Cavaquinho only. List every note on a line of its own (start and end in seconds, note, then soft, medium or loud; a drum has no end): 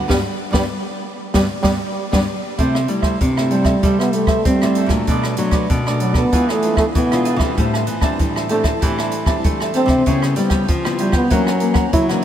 0.08 0.19 G4 medium
0.08 0.19 B4 loud
0.08 0.19 D5 medium
0.53 0.64 G4 medium
0.53 0.64 B4 medium
0.53 0.64 D5 loud
1.34 1.44 G4 medium
1.34 1.45 B4 medium
1.34 1.44 D5 medium
1.64 1.74 G4 medium
1.64 1.74 B4 medium
1.64 1.74 D5 medium
2.13 2.22 G4 loud
2.13 2.23 B4 medium
2.13 2.22 D5 medium
2.58 2.73 E4 medium
2.58 2.73 A4 medium
2.58 2.73 C5 medium
2.58 2.74 E5 medium
2.75 2.87 A4 soft
2.75 2.88 C5 soft
2.75 2.88 E5 medium
2.88 muted cavaquinho stroke soft
3.02 3.19 A4 medium
3.02 3.19 C5 medium
3.02 3.18 E5 medium
3.21 muted cavaquinho stroke soft
3.37 3.50 A4 soft
3.37 3.51 C5 soft
3.37 3.51 E5 soft
3.51 3.66 E4 soft
3.51 3.66 A4 medium
3.51 3.65 C5 medium
3.51 3.64 E5 medium
3.65 3.82 A4 medium
3.65 3.82 C5 medium
3.65 3.81 E5 medium
3.84 3.98 E4 medium
3.84 3.99 A4 medium
3.84 3.99 C5 medium
3.84 3.99 E5 medium
4.00 4.29 A4 soft
4.00 4.28 C5 soft
4.00 4.27 E5 soft
4.28 4.60 A4 medium
4.28 4.60 C5 medium
4.28 4.59 E5 medium
4.63 4.76 A4 soft
4.63 4.77 C5 soft
4.63 4.77 E5 soft
4.77 4.91 E4 medium
4.77 4.91 A4 medium
4.77 4.90 C5 medium
4.77 4.89 E5 medium
4.90 5.07 A4 soft
4.90 5.06 C5 soft
4.90 5.06 E5 soft
5.08 5.23 D4 medium
5.08 5.23 A4 medium
5.08 5.23 B4 medium
5.08 5.24 D5 medium
5.25 5.38 A4 soft
5.25 5.38 B4 soft
5.25 5.39 D5 medium
5.39 muted cavaquinho stroke soft
5.53 5.69 A4 medium
5.53 5.69 B4 medium
5.53 5.68 D5 medium
5.71 muted cavaquinho stroke soft
5.87 6.00 A4 soft
5.87 6.01 B4 soft
5.87 6.01 D5 medium
6.01 6.16 D4 soft
6.01 6.15 A4 medium
6.01 6.14 B4 medium
6.01 6.13 D5 medium
6.14 6.31 A4 medium
6.14 6.31 B4 medium
6.14 6.30 D5 medium
6.32 6.47 D4 medium
6.32 6.47 G#4 medium
6.32 6.48 B4 medium
6.32 6.48 E5 medium
6.49 6.76 G#4 soft
6.49 6.75 B4 soft
6.49 6.74 E5 soft
6.75 7.08 G#4 medium
6.75 7.08 B4 medium
6.75 7.07 E5 medium
7.11 7.23 G#4 soft
7.11 7.24 B4 soft
7.11 7.25 E5 medium
7.24 7.39 D4 medium
7.24 7.40 G#4 medium
7.24 7.39 B4 medium
7.24 7.38 E5 medium
7.39 7.56 G#4 soft
7.39 7.55 B4 soft
7.39 7.55 E5 soft
7.57 7.72 G4 medium
7.57 7.72 C5 medium
7.57 7.72 E5 medium
7.57 7.73 A5 medium
7.74 7.87 C5 soft
7.74 7.87 E5 soft
7.74 7.88 A5 medium
7.88 muted cavaquinho stroke soft
8.02 8.18 C5 medium
8.02 8.18 E5 medium
8.02 8.17 A5 medium
8.21 muted cavaquinho stroke soft
8.36 8.49 C5 soft
8.36 8.49 E5 soft
8.36 8.50 A5 soft
8.49 8.64 G4 soft
8.49 8.64 C5 soft
8.49 8.63 E5 medium
8.49 8.62 A5 medium
8.63 8.80 C5 medium
8.63 8.80 E5 medium
8.63 8.79 A5 medium
8.81 8.96 G4 medium
8.81 8.96 C5 medium
8.81 8.97 E5 medium
8.81 8.97 A5 medium
8.99 9.27 C5 soft
8.99 9.26 E5 soft
8.99 9.25 A5 medium
9.27 9.58 C5 medium
9.27 9.58 E5 medium
9.27 9.58 A5 medium
9.61 9.74 C5 soft
9.61 9.74 E5 soft
9.61 9.75 A5 soft
9.74 9.89 G4 medium
9.74 9.89 C5 medium
9.74 9.88 E5 medium
9.74 9.87 A5 medium
9.88 10.05 E5 soft
9.88 10.04 A5 medium
10.06 10.21 E4 medium
10.06 10.21 B4 medium
10.06 10.22 C#5 medium
10.06 10.22 G5 medium
10.23 10.36 B4 soft
10.23 10.36 C#5 soft
10.23 10.36 G5 soft
10.37 muted cavaquinho stroke soft
10.50 10.67 B4 medium
10.50 10.67 C#5 medium
10.50 10.66 G5 medium
10.69 muted cavaquinho stroke soft
10.86 10.98 B4 soft
10.86 10.98 C#5 soft
10.86 10.99 G5 soft
10.98 11.13 E4 soft
10.98 11.13 B4 soft
10.98 11.12 C#5 medium
10.98 11.11 G5 medium
11.13 11.29 B4 medium
11.13 11.29 C#5 medium
11.13 11.28 G5 medium
11.30 11.45 E4 medium
11.30 11.45 A#4 medium
11.30 11.46 C#5 medium
11.30 11.46 F#5 medium
11.47 11.75 A#4 soft
11.47 11.74 C#5 soft
11.47 11.73 F#5 soft
11.74 12.07 A#4 medium
11.74 12.07 C#5 medium
11.74 12.06 F#5 medium
12.09 12.21 A#4 soft
12.09 12.21 C#5 soft
12.09 12.22 F#5 soft